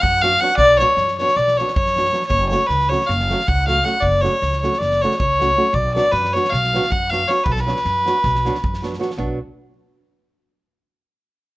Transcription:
0.01 F#2 F#5, kick
0.21 F#3 B3 D4 F#4 F5, snare
0.40 F#3 B3 D4 F#4 F#5, snare
0.57 B1 D5, kick
0.79 F#3 B3 D4 F#4 C#5, snare
0.97 F#2, snare
1.08 snare
1.18 F#3 B3 D4 F#4 C#5, snare
1.29 snare
1.36 B1 D5, snare
1.48 snare
1.57 F#3 B3 C#5, snare
1.61 D4 F#4
1.68 snare
1.75 F#2 C#5, kick
1.86 snare
1.96 F#3 B3 D4 F#4, snare
2.05 snare
2.12 F#3 B3 D4 F#4, snare
2.22 snare
2.27 F#1 C#5, kick
2.49 F#3 A3 C#4 F#4 C#5, snare
2.66 C#2 B4, snare
2.80 snare
2.89 F#3 A3 C#4 F#4 C#5, snare
3.01 snare
3.06 F#1 F5, snare
3.20 snare
3.30 F#3 A3 C#4 F#4, snare
3.40 snare
3.47 C#2 F#5, kick
3.67 F#3 A3 C#4 F#4 F5, snare
3.84 F#3 A3 C#4 F#4 F#5, snare
4.00 F#1 D5, kick
4.21 F#3 A3 C#4 F#4 C#5, snare
4.42 C#2, snare
4.52 snare
4.61 F#3 A3 C#4 F#4 C#5, snare
4.73 snare
4.78 F#1 D5, snare
4.91 snare
5.01 F#3 A3 C#4 F#4 C#5, snare
5.11 snare
5.19 C#2 C#5, kick
5.40 F#3 A3 C#4 F#4, snare
5.56 F#3 A3 C#4 F#4
5.73 B1 D5, kick
5.94 F#3 B3 D4 F#4 D5, snare
6.12 F#2 B4, snare
6.25 snare
6.33 F#3 B3 D4 F#4 C#5, snare
6.44 snare
6.50 B1 F5, snare
6.64 snare
6.73 F#3 B3 D4 F#4, snare
6.83 snare
6.90 F#2 F#5, kick
7.10 F#3 B3 D4 F#4 F5, snare
7.28 F#3 B3 D4 F#4 C#5, snare
7.44 B1 B4, kick
7.51 A4
7.56 B4, snare
7.67 F#3 B3 D4 F#4, snare
7.76 snare
7.85 F#2, snare
8.05 F#3 B3 D4 F#4, snare
8.23 B1, kick, snare
8.35 snare
8.45 F#3 B3 D4 F#4, snare
8.55 snare
8.64 F#2, kick
8.74 snare
8.82 F#3 B3 D4 F#4, snare
8.93 snare
8.99 F#3 B3 D4 F#4, snare
9.11 snare
9.17 B1 F#3 B3 D4 F#4, kick

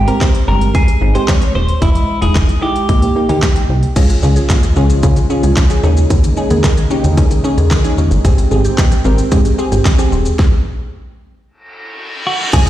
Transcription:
Already playing: G#1
0.07 G#3 C4 G4 A#4, closed hi-hat
0.21 C5, kick, snare, clap, closed hi-hat
0.35 closed hi-hat
0.48 G1 G#3 C4 G4 A#4
0.61 closed hi-hat
0.75 G#4, kick, closed hi-hat
0.88 closed hi-hat
1.01 G#1 G#3 C4 D#4
1.15 G#3 C4 G4 C5, closed hi-hat
1.28 C#5, kick, snare, clap, closed hi-hat
1.42 closed hi-hat
1.55 D#1 C5
1.68 closed hi-hat
1.82 E1 G#3 E4 D#5, kick, closed hi-hat
1.95 closed hi-hat
2.22 E1 G#3 D#4 E4 G#4, closed hi-hat
2.35 E1, kick, snare, clap, closed hi-hat
2.49 closed hi-hat
2.62 G#3 D#4 E4 G4
2.76 closed hi-hat
2.89 D#2 A#3 D#4 G4, kick, closed hi-hat
3.02 A#1, closed hi-hat
3.16 A#3 D#4 G4
3.29 D#2 A#3 D#4 G4, closed hi-hat
3.42 D#2, kick, snare, clap, closed hi-hat
3.56 closed hi-hat
3.69 C2
3.83 closed hi-hat
3.96 C#2 C#3 F3 G#3 C#4 F4 G#4, kick, closed hi-hat, crash, shaker
4.10 G#3, closed hi-hat, shaker
4.23 C#2 C#4 F4 G#4, shaker
4.36 G#4, closed hi-hat, shaker
4.50 D#2 F5, kick, snare, clap, closed hi-hat, shaker
4.63 G#4, closed hi-hat, shaker
4.76 C#2 C#4 F4 G#4, shaker
4.90 closed hi-hat, shaker
5.03 C#3 F3 C#4 F4 G#4, kick, closed hi-hat, shaker
5.16 G#3, closed hi-hat, shaker
5.30 C#4 F4 G#4, shaker
5.43 C#2 G#4, closed hi-hat, shaker
5.57 kick, snare, clap, closed hi-hat, shaker
5.70 C#4 F4 G#4, closed hi-hat, shaker
5.83 D#2 G#3 A#3 C#4 D#4 G#4, shaker
5.97 closed hi-hat, shaker
6.10 D#2 D#3, kick, closed hi-hat, shaker
6.24 A#3, closed hi-hat, shaker
6.37 C#4 D#4 G#4, shaker
6.50 D#2 G#4, closed hi-hat, shaker
6.64 D#3 D#5, kick, snare, clap, closed hi-hat, shaker
6.77 G#4, closed hi-hat, shaker
6.90 C#4 D#4 G4, shaker
7.04 D#2, closed hi-hat, shaker
7.17 D#3 C#4 D#4 G#4, kick, closed hi-hat, shaker
7.31 A#3, closed hi-hat, shaker
7.44 C#4 D#4 G#4, shaker
7.58 D#2 G#4, closed hi-hat, shaker
7.71 D#3, kick, snare, clap, closed hi-hat, shaker
7.84 C#4 D#4 G#4, closed hi-hat, shaker
7.98 D#2 C#4, shaker
8.11 G1, closed hi-hat, shaker
8.24 G#1 D#3 C4 G4 G#4 G5, kick, closed hi-hat, shaker
8.38 G#3, closed hi-hat, shaker
8.51 G#1 C4 G4 G#4, shaker
8.65 G4, closed hi-hat, shaker
8.78 A#1 D#5, kick, snare, clap, closed hi-hat, shaker
8.92 G4, closed hi-hat, shaker
9.05 G#1 C4 G4 A#4, shaker
9.18 closed hi-hat, shaker
9.32 G#2 D#3 C4 G4 G#4, kick, closed hi-hat, shaker
9.45 G#3, closed hi-hat, shaker
9.58 C4 G4 G#4, shaker
9.72 G#1 G4, closed hi-hat, shaker
9.85 kick, snare, clap, closed hi-hat, shaker
9.99 C4 G4 G#4, closed hi-hat, shaker
10.12 D#1 C4, shaker
10.26 closed hi-hat, shaker
10.39 kick, snare
11.46 reverse cymbal
12.27 F#4
12.53 C#2 F3 G#3 C#4 F4 G#4, kick, closed hi-hat, crash, impact, shaker

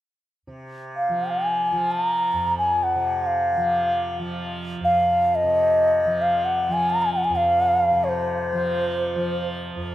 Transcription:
0.47 C3
0.96 F5
1.09 F3
1.30 G#5
1.72 F3
1.92 A5
2.04 A#5
2.33 F2
2.58 G#5
2.83 F#5
2.95 C3
3.22 F#5
3.27 F5
3.57 F3
4.19 F3
4.81 F2 F5
5.35 D#5
5.44 C3
6.06 F3
6.21 F5
6.45 F#5
6.69 F3
6.73 G#5
6.90 A#5
7.02 G#5
7.13 F#5
7.24 G#5
7.30 F2
7.37 F5
7.91 C3
8.04 C#5
8.09 C5
8.53 F3
9.16 F3
9.76 F2

